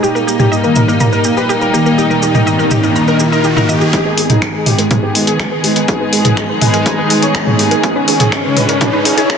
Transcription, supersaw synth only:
0.03 0.09 G4 medium
0.15 0.21 A#3 medium
0.27 0.34 A#3 medium
0.40 0.46 G4 medium
0.52 0.58 A#3 medium
0.64 0.70 A#3 medium
0.76 0.82 A#4 medium
0.89 0.95 A#3 medium
1.01 1.07 A#3 medium
1.13 1.19 A#4 medium
1.25 1.31 A#3 medium
1.37 1.43 B4 medium
1.49 1.56 A#3 medium
1.61 1.68 A#4 medium
1.74 1.80 A#3 medium
1.86 1.92 A#3 medium
1.98 2.04 D#4 loud
2.10 2.17 D#3 medium
2.22 2.29 D#3 medium
2.35 2.41 D#4 medium
2.47 2.53 D#3 medium
2.59 2.65 D#3 medium
2.71 2.77 G4 medium
2.83 2.90 D#3 medium
2.96 3.02 D#3 medium
3.08 3.14 A#4 medium
3.20 3.26 D#3 medium
3.32 3.38 A#4 medium
3.44 3.51 D#3 medium
3.56 3.63 A#4 medium
3.69 3.75 D#3 medium
3.81 3.87 D#3 medium
3.93 3.99 D#4 loud
4.05 4.12 G#3 medium
4.17 4.24 G#3 medium
4.30 4.36 D#4 medium
4.42 4.48 G#3 medium
4.54 4.60 G#3 medium
4.66 4.73 G4 medium
4.78 4.85 G#3 medium
4.91 4.97 G#3 medium
5.03 5.09 G4 medium
5.15 5.21 G#3 medium
5.27 5.34 G#4 medium
5.40 5.46 G#3 medium
5.52 5.58 G#4 medium
5.64 5.70 G#3 medium
5.76 5.82 G#3 medium
5.88 5.95 G#4 medium
6.00 6.07 G#3 medium
6.13 6.19 G#3 medium
6.25 6.31 G#4 medium
6.37 6.43 G#3 medium
6.49 6.56 G#3 medium
6.61 6.68 B4 loud
6.74 6.80 G#3 medium
6.86 6.92 G#3 medium
6.98 7.04 B4 medium
7.10 7.17 G#3 medium
7.22 7.29 C#5 medium
7.35 7.41 G#3 medium
7.47 7.53 C#5 medium
7.59 7.65 G#3 medium
7.71 7.78 G#3 medium
7.83 7.90 G#4 loud
7.96 8.02 C#4 medium
8.08 8.14 C#4 medium
8.20 8.26 G#4 loud
8.32 8.39 C#4 medium
8.44 8.51 C#4 medium
8.56 8.63 B4 medium
8.69 8.75 C#4 medium
8.81 8.87 C#4 medium
8.93 8.99 B4 medium
9.05 9.12 C#4 medium
9.18 9.24 C#5 medium
9.30 9.36 C#4 medium

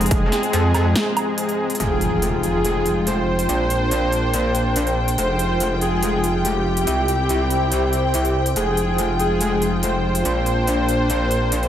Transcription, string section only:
0.00 1.76 C3 medium
0.00 1.76 F3 medium
0.00 1.79 C4 medium
1.80 3.47 G#3 medium
1.80 3.47 F4 medium
1.80 11.68 G5 medium
3.49 5.16 A#3 medium
3.49 5.16 D4 medium
5.18 6.85 G#3 medium
5.18 6.85 F4 medium
6.87 8.54 C4 medium
6.87 8.54 E4 medium
8.56 10.23 G#3 medium
8.56 10.23 F4 medium
10.25 11.68 A#3 medium
10.25 11.68 D4 medium

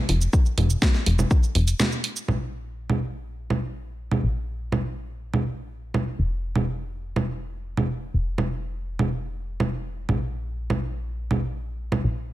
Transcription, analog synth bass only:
0.09 0.28 F1 medium
0.58 0.77 F1 medium
1.06 1.26 F1 medium
1.55 1.74 F1 medium
2.28 4.21 A#1 medium
4.23 6.16 A#1 medium
6.19 8.11 F1 medium
8.14 10.07 F1 medium
10.09 12.02 A#1 medium
12.04 12.33 A#1 medium

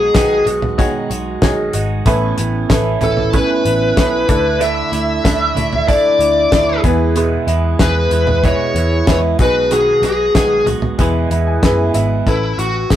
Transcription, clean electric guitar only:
0.00 0.14 G#3 soft
0.00 0.14 D#4 medium
0.00 0.14 F#4 medium
0.14 0.46 D#3 medium
0.14 0.47 G#3 medium
0.14 0.46 D#4 medium
0.14 0.45 F#4 medium
0.46 0.78 G#3 soft
0.46 0.78 D#4 soft
0.46 0.78 F#4 medium
0.78 1.10 B2 medium
0.78 1.10 D#3 medium
0.78 1.10 G#3 medium
0.78 1.10 D#4 medium
0.78 1.08 F#4 medium
1.10 1.41 G#3 medium
1.10 1.42 D#4 medium
1.10 1.42 F#4 medium
1.42 1.74 D#3 medium
1.42 1.74 G#3 medium
1.42 1.73 D#4 medium
1.42 1.72 F#4 medium
1.74 2.06 G#3 soft
1.74 2.06 D#4 medium
1.74 2.06 F#4 medium
2.06 2.38 A2 medium
2.06 2.38 E3 medium
2.06 2.38 B3 medium
2.06 2.37 C#4 medium
2.06 2.36 E4 medium
2.37 2.69 B3 soft
2.37 2.69 C#4 medium
2.37 2.69 E4 medium
2.69 3.01 E3 medium
2.69 3.02 B3 medium
2.69 3.01 C#4 medium
2.69 3.00 E4 medium
3.01 3.33 B3 soft
3.01 3.33 C#4 soft
3.01 3.33 E4 medium
3.33 3.65 A2 medium
3.33 3.65 E3 medium
3.33 3.65 B3 medium
3.33 3.64 C#4 loud
3.33 3.63 E4 loud
3.64 3.96 B3 medium
3.64 3.96 C#4 medium
3.64 3.97 E4 medium
3.96 4.29 E3 medium
3.96 4.29 B3 medium
3.96 4.29 C#4 medium
3.96 4.26 E4 medium
4.28 4.59 A3 medium
4.28 4.59 D4 medium
4.28 4.60 E4 medium
4.59 4.92 D3 medium
4.59 4.92 A3 medium
4.59 4.92 D4 medium
4.59 4.90 E4 medium
4.92 5.23 A3 soft
4.92 5.24 D4 medium
4.92 5.24 E4 medium
5.23 5.56 D3 medium
5.23 5.56 A3 medium
5.23 5.55 D4 medium
5.23 5.54 E4 medium
5.55 5.87 A3 soft
5.55 5.87 D4 medium
5.55 5.88 E4 medium
5.87 6.20 D3 medium
5.87 6.20 A3 medium
5.87 6.19 D4 loud
5.87 6.18 E4 loud
6.19 6.51 A3 soft
6.19 6.51 D4 medium
6.19 6.52 E4 medium
6.51 6.84 D3 medium
6.51 6.84 A3 medium
6.51 6.83 D4 medium
6.51 6.82 E4 medium
6.83 7.15 E3 soft
6.83 7.16 G#3 medium
6.83 7.16 B3 medium
6.83 7.16 E4 medium
7.16 7.48 E2 medium
7.16 7.48 B2 medium
7.16 7.48 E3 medium
7.16 7.48 G#3 medium
7.16 7.47 B3 loud
7.16 7.46 E4 medium
7.47 7.78 E3 medium
7.47 7.79 G#3 medium
7.47 7.79 B3 medium
7.47 7.80 E4 medium
7.79 8.12 E3 medium
7.79 8.12 G#3 medium
7.79 8.12 B3 medium
7.79 8.11 E4 medium
8.12 8.43 E3 soft
8.12 8.43 G#3 medium
8.12 8.44 B3 medium
8.12 8.44 E4 medium
8.44 8.76 E2 medium
8.44 8.76 B2 medium
8.44 8.76 E3 medium
8.44 8.76 G#3 medium
8.44 8.75 B3 medium
8.44 8.75 E4 medium
8.76 9.06 E3 soft
8.76 9.07 G#3 medium
8.76 9.07 B3 medium
8.76 9.08 E4 medium
9.07 9.39 E3 medium
9.07 9.40 G#3 medium
9.07 9.39 B3 medium
9.07 9.38 E4 medium
9.39 9.71 G#3 soft
9.39 9.71 B3 medium
9.39 9.71 F#4 medium
9.71 10.03 B2 medium
9.71 10.03 D#3 medium
9.71 10.04 G#3 medium
9.71 10.03 B3 medium
9.71 10.02 F#4 loud
10.03 10.34 G#3 medium
10.03 10.35 B3 medium
10.03 10.35 F#4 medium
10.35 10.67 D#3 medium
10.35 10.67 G#3 medium
10.35 10.66 B3 medium
10.35 10.65 F#4 medium
10.67 10.99 G#3 soft
10.67 10.99 B3 soft
10.67 10.99 F#4 medium
10.99 11.31 E2 medium
10.99 11.31 B2 medium
10.99 11.31 E3 medium
10.99 11.31 G#3 medium
10.99 11.30 B3 loud
10.99 11.29 E4 medium
11.31 11.61 E3 soft
11.31 11.62 G#3 medium
11.31 11.62 B3 medium
11.31 11.63 E4 medium
11.62 11.94 E3 medium
11.62 11.94 G#3 medium
11.62 11.94 B3 medium
11.62 11.93 E4 medium
11.94 12.27 E3 soft
11.94 12.27 G#3 soft
11.94 12.27 B3 medium
11.94 12.26 E4 medium

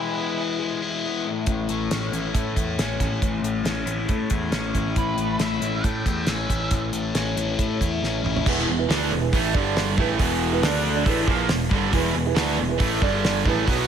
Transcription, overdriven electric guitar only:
0.00 3.22 E3 medium
0.00 0.58 G#3 medium
0.00 0.14 B3 medium
0.00 0.37 E4 medium
0.15 1.04 B3 medium
0.37 0.82 E4 medium
0.59 1.25 G#3 medium
0.82 2.13 E4 medium
1.05 1.26 B3 medium
1.26 1.47 A2 medium
1.47 3.21 A2 medium
1.69 2.34 A3 medium
1.91 2.78 C#4 medium
2.13 2.56 E4 medium
2.35 3.44 A3 medium
2.56 3.00 E4 medium
2.78 3.64 C#4 medium
3.01 3.85 E4 medium
3.22 4.95 A2 medium
3.44 4.08 A3 medium
3.64 4.51 C#4 medium
3.86 4.30 E4 medium
4.08 5.19 A3 medium
4.31 4.74 E4 medium
4.51 5.42 C#4 medium
4.74 5.62 E4 medium
4.96 6.05 A2 medium
5.19 5.83 A3 medium
5.42 6.26 C#4 medium
5.62 6.06 E4 medium
5.84 6.91 A3 medium
6.07 6.48 E4 medium
6.27 7.13 C#4 medium
6.49 7.36 E4 medium
6.72 7.80 A2 medium
6.93 7.57 A3 medium
7.14 8.02 C#4 medium
7.37 7.79 E4 medium
7.59 8.46 A3 medium
7.81 8.23 E4 medium
8.04 8.46 C#4 medium
8.24 8.46 E4 medium
8.45 8.66 E2 loud
8.45 8.67 B2 loud
8.45 8.67 E3 loud
8.68 8.85 E2 medium
8.68 8.85 B2 medium
8.89 9.10 D3 medium
8.89 9.10 A3 medium
8.89 9.11 D4 loud
9.12 9.29 E2 medium
9.12 9.29 B2 medium
9.33 9.54 A2 medium
9.33 9.54 E3 medium
9.33 9.54 A3 medium
9.53 9.96 G2 medium
9.53 9.97 D3 medium
9.53 9.97 G3 medium
9.97 10.19 A2 medium
9.97 10.18 E3 medium
9.97 10.19 A3 loud
10.18 10.62 E2 medium
10.18 10.61 B2 loud
10.18 10.62 E3 loud
10.62 11.04 D3 medium
10.62 11.05 A3 medium
10.62 11.05 D4 loud
11.04 11.25 A2 medium
11.04 11.26 E3 loud
11.04 11.27 A3 loud
11.26 11.48 A#2 medium
11.26 11.48 F3 medium
11.26 11.49 A#3 medium
11.48 11.66 E2 medium
11.48 11.66 B2 medium
11.69 11.91 G2 medium
11.69 11.91 D3 medium
11.69 11.92 G3 medium
11.91 12.13 E2 medium
11.91 12.13 B2 loud
11.91 12.14 E3 loud
12.14 12.32 E2 medium
12.14 12.32 B2 medium
12.35 12.57 D3 medium
12.35 12.57 A3 medium
12.35 12.57 D4 loud
12.56 12.75 E2 medium
12.56 12.75 B2 medium
12.78 13.00 A2 medium
12.78 13.01 E3 medium
12.78 13.01 A3 medium
13.02 13.45 G2 medium
13.02 13.45 D3 medium
13.02 13.45 G3 medium
13.46 13.66 A2 medium
13.46 13.67 E3 medium
13.46 13.67 A3 medium
13.66 13.87 B2 medium
13.66 13.87 F#3 medium
13.66 13.87 B3 loud

